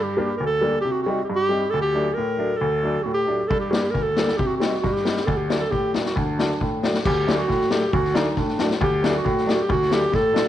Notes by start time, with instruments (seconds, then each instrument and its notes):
Already playing: upright piano G2
0.03 clarinet G4
0.17 upright piano G3 A#3 D4
0.37 upright piano D2, clarinet A#4
0.46 clarinet A4
0.61 upright piano G3 A#3 D4
0.81 upright piano C3, clarinet G4
0.92 clarinet F#4
1.02 clarinet F#4
1.06 upright piano G3 C4 D#4
1.24 clarinet G4
1.30 upright piano G2
1.35 clarinet G4
1.49 upright piano G3 C4 D#4
1.70 upright piano D2, clarinet A4
1.81 clarinet G4
1.93 upright piano F#3 A3 D4
2.14 upright piano A2, clarinet A#4
2.37 upright piano F#3 A3 D4
2.57 upright piano D2, clarinet A4
2.83 upright piano F#3 A3 D4
3.03 upright piano A2, clarinet F#4
3.14 clarinet G4
3.26 upright piano F#3 A3 D4
3.48 upright piano G2, clarinet A4, kick
3.60 clarinet G4
3.70 upright piano G3 A#3 D4, clarinet F#4 G4, snare
3.84 snare
3.91 upright piano D2, clarinet A#4
3.95 kick
4.03 clarinet A4
4.16 upright piano G3 A#3 D4, snare
4.28 snare
4.37 upright piano C3, clarinet G4, kick
4.46 clarinet F#4
4.57 upright piano G3, clarinet F#4
4.61 upright piano C4 D#4, snare
4.74 snare
4.80 upright piano G2, clarinet F#4
4.84 kick, snare
4.93 clarinet G4, snare
5.05 upright piano G3 C4 D#4, snare
5.16 snare
5.25 upright piano D2, clarinet A4, kick
5.36 clarinet G4
5.49 upright piano F#3 A3 D4, snare
5.59 clarinet A4
5.71 upright piano A2, clarinet G4, kick
5.92 upright piano F#3 A3 D4, snare
6.06 clarinet F#4, snare
6.16 upright piano D2, clarinet D4, kick
6.38 upright piano F#3 A3 D4, snare
6.50 snare
6.61 upright piano A2, kick
6.83 upright piano F#3 A3 D4, snare
6.94 snare
7.05 upright piano D2, clarinet G4, kick, crash
7.27 upright piano F#3 A3 D4, snare
7.38 clarinet F#4
7.48 upright piano A2, kick, snare
7.61 snare
7.70 upright piano F#3 A3 D4, clarinet G4, snare
7.92 upright piano D2, clarinet F#4, kick
8.05 snare
8.14 upright piano F#3 A3 D4, clarinet D#4, snare
8.36 upright piano A2, clarinet D4, kick, snare
8.48 snare
8.59 upright piano F#3 A3 D4, snare
8.71 snare
8.81 upright piano D2, clarinet G4, kick
9.02 upright piano F#3 A3 D4, snare
9.17 clarinet F#4
9.25 upright piano A2, kick
9.37 snare
9.45 upright piano F#3 A3 D4, snare
9.51 clarinet F#4 G4
9.61 clarinet G4
9.69 upright piano D2, clarinet F#4, kick
9.82 snare
9.90 upright piano F#3 A3 D4, clarinet G4, snare
10.12 upright piano A2, clarinet A4, kick, snare
10.32 upright piano F#3 A3 D4, snare